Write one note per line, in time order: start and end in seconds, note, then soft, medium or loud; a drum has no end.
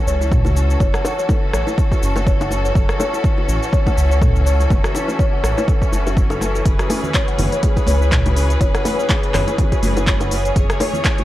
0.00 11.24 E3 medium
0.00 11.24 C#4 medium
0.00 6.62 F#4 medium
0.00 6.62 A4 medium
0.07 0.76 C#2 medium
0.07 0.20 C#5 loud
0.07 cabasa medium
0.21 0.31 E4 medium
0.21 cabasa soft
0.32 kick loud
0.32 mid tom medium
0.32 cabasa soft
0.45 0.55 F#4 medium
0.45 low bongo loud
0.45 cabasa soft
0.56 0.68 C#4 medium
0.56 cabasa medium
0.70 cabasa soft
0.80 0.90 F#1 loud
0.80 0.93 C#5 loud
0.80 kick loud
0.80 low bongo medium
0.80 cabasa medium
0.94 1.04 F#5 medium
0.94 cross-stick medium
0.94 cabasa soft
1.05 high bongo loud
1.05 cabasa loud
1.19 1.24 C#5 medium
1.19 cabasa soft
1.29 1.41 A4 medium
1.29 kick loud
1.29 low bongo loud
1.29 cabasa medium
1.53 1.64 A1 medium
1.53 1.66 C#5 loud
1.53 cross-stick medium
1.53 cabasa medium
1.67 1.77 E4 loud
1.67 low bongo medium
1.67 cabasa soft
1.78 kick loud
1.78 cabasa medium
1.92 2.02 F#4 medium
1.92 kick medium
1.92 cabasa soft
2.02 2.71 F#1 medium
2.02 2.15 C#4 medium
2.02 cabasa medium
2.16 high bongo medium
2.16 low bongo medium
2.16 cabasa soft
2.27 2.39 C#5 loud
2.27 kick loud
2.27 cabasa medium
2.40 2.50 F#5 medium
2.40 high bongo loud
2.40 cabasa soft
2.51 low bongo medium
2.51 cabasa loud
2.65 2.71 C#5 medium
2.65 cabasa soft
2.75 2.85 F#1 loud
2.75 2.88 A4 medium
2.75 kick loud
2.75 cabasa medium
2.89 cross-stick medium
2.89 cabasa soft
3.00 3.12 C#5 loud
3.00 high bongo loud
3.00 low bongo medium
3.00 cabasa loud
3.13 3.23 E4 loud
3.13 cabasa soft
3.24 kick loud
3.24 cabasa medium
3.38 3.48 F#4 medium
3.38 low bongo medium
3.48 3.59 A1 loud
3.48 3.61 C#4 medium
3.48 cabasa loud
3.63 cabasa soft
3.73 3.85 C#5 loud
3.73 kick loud
3.73 cabasa medium
3.87 3.96 F#5 medium
3.87 kick medium
3.87 low bongo loud
3.87 cabasa soft
3.97 4.66 C#2 medium
3.97 cabasa loud
4.11 4.17 C#5 medium
4.11 cabasa soft
4.22 4.34 A4 medium
4.22 kick loud
4.22 mid tom medium
4.22 low bongo medium
4.22 cabasa medium
4.36 cabasa soft
4.46 4.58 C#5 loud
4.46 cabasa loud
4.60 4.69 E4 loud
4.60 cabasa soft
4.70 4.81 F#1 loud
4.70 kick loud
4.70 low bongo loud
4.70 cabasa medium
4.84 4.94 F#4 medium
4.84 cross-stick medium
4.84 cabasa soft
4.95 5.07 C#4 medium
4.95 high bongo loud
4.95 cabasa loud
5.08 low bongo medium
5.08 cabasa soft
5.19 5.32 C#5 loud
5.19 kick loud
5.19 cabasa medium
5.33 5.43 F#5 medium
5.44 5.54 A1 loud
5.44 cross-stick medium
5.44 cabasa medium
5.57 5.63 C#5 medium
5.57 low bongo loud
5.57 cabasa soft
5.68 5.80 A4 medium
5.68 kick loud
5.68 cabasa medium
5.82 kick medium
5.82 cabasa soft
5.92 6.61 F#1 loud
5.92 6.05 E5 medium
5.92 low bongo medium
5.92 cabasa medium
6.06 6.16 F#4 medium
6.06 high bongo medium
6.06 cabasa soft
6.17 kick loud
6.17 cabasa medium
6.30 6.40 A4 loud
6.30 high bongo loud
6.30 cabasa soft
6.41 6.54 A4 medium
6.41 low bongo loud
6.41 cabasa loud
6.55 6.65 A4 medium
6.55 cabasa soft
6.66 6.76 F#1 loud
6.66 11.24 G#4 medium
6.66 10.52 B4 loud
6.66 kick loud
6.66 closed hi-hat medium
6.66 cabasa medium
6.79 6.90 F#4 medium
6.79 cross-stick medium
6.79 closed hi-hat soft
6.79 cabasa soft
6.90 7.02 C#4 medium
6.90 open hi-hat medium
6.90 high bongo medium
6.90 low bongo medium
6.90 high conga medium
6.90 cabasa medium
7.04 low conga medium
7.04 cabasa soft
7.14 7.27 C#5 medium
7.14 kick loud
7.14 clap loud
7.14 closed hi-hat medium
7.14 cabasa medium
7.28 7.38 F#5 medium
7.28 closed hi-hat soft
7.38 7.49 F#1 loud
7.38 open hi-hat medium
7.38 low bongo loud
7.38 high conga medium
7.38 low conga loud
7.38 cabasa medium
7.52 7.58 C#5 medium
7.52 closed hi-hat soft
7.52 cabasa soft
7.63 7.76 G#4 medium
7.63 kick loud
7.63 closed hi-hat medium
7.63 high conga medium
7.63 cabasa medium
7.76 kick medium
7.76 closed hi-hat soft
7.76 low bongo medium
7.76 cabasa soft
7.87 8.56 C#2 medium
7.87 8.00 C#5 loud
7.87 open hi-hat medium
7.87 high conga loud
7.87 cabasa medium
8.01 8.11 E4 loud
8.01 cabasa soft
8.12 kick loud
8.12 clap loud
8.12 closed hi-hat medium
8.12 mid tom loud
8.12 cabasa medium
8.26 8.36 F#4 medium
8.26 closed hi-hat soft
8.26 low bongo loud
8.26 cabasa soft
8.36 8.49 C#4 medium
8.36 open hi-hat medium
8.36 cabasa medium
8.50 closed hi-hat soft
8.50 cabasa soft
8.61 8.71 F#1 loud
8.61 8.73 C#5 loud
8.61 kick loud
8.61 closed hi-hat medium
8.61 low bongo medium
8.61 cabasa soft
8.74 8.84 F#5 medium
8.74 cross-stick medium
8.74 closed hi-hat soft
8.74 cabasa soft
8.85 open hi-hat medium
8.85 high bongo loud
8.85 high conga loud
8.85 cabasa medium
8.99 9.05 C#5 medium
8.99 cabasa soft
9.09 9.22 G#4 medium
9.09 kick loud
9.09 clap loud
9.09 closed hi-hat medium
9.09 low bongo medium
9.09 cabasa medium
9.23 closed hi-hat soft
9.34 9.44 F#1 loud
9.34 9.46 C#5 loud
9.34 cross-stick medium
9.34 clap medium
9.34 open hi-hat medium
9.34 high conga medium
9.34 low conga loud
9.34 cabasa medium
9.47 9.57 E4 loud
9.47 closed hi-hat soft
9.47 low bongo medium
9.47 cabasa soft
9.58 kick loud
9.58 closed hi-hat medium
9.58 low conga medium
9.58 cabasa soft
9.72 9.82 F#4 medium
9.72 kick medium
9.72 closed hi-hat soft
9.72 cabasa soft
9.83 10.51 F#1 medium
9.83 9.95 C#4 medium
9.83 open hi-hat medium
9.83 high conga loud
9.83 cabasa medium
9.97 closed hi-hat soft
9.97 high bongo medium
9.97 low bongo medium
9.97 cabasa soft
10.07 10.20 C#5 loud
10.07 kick loud
10.07 clap loud
10.07 closed hi-hat medium
10.07 high conga medium
10.07 cabasa medium
10.20 10.31 F#5 medium
10.20 closed hi-hat soft
10.20 high bongo loud
10.20 cabasa soft
10.31 open hi-hat medium
10.31 low bongo medium
10.31 cabasa medium
10.45 10.51 C#5 medium
10.45 closed hi-hat soft
10.45 cabasa soft
10.56 10.66 F#1 loud
10.56 10.68 G#4 medium
10.56 11.24 C#5 loud
10.56 kick loud
10.56 closed hi-hat medium
10.56 cabasa medium
10.70 cross-stick loud
10.70 closed hi-hat soft
10.70 cabasa soft
10.80 10.93 C#5 loud
10.80 open hi-hat medium
10.80 high bongo loud
10.80 low bongo medium
10.80 high conga medium
10.80 cabasa medium
10.93 11.04 E4 loud
10.93 low conga medium
10.93 cabasa soft
11.05 kick loud
11.05 clap loud
11.05 closed hi-hat medium
11.05 cabasa soft
11.18 11.24 F#4 medium
11.18 closed hi-hat soft
11.18 low bongo medium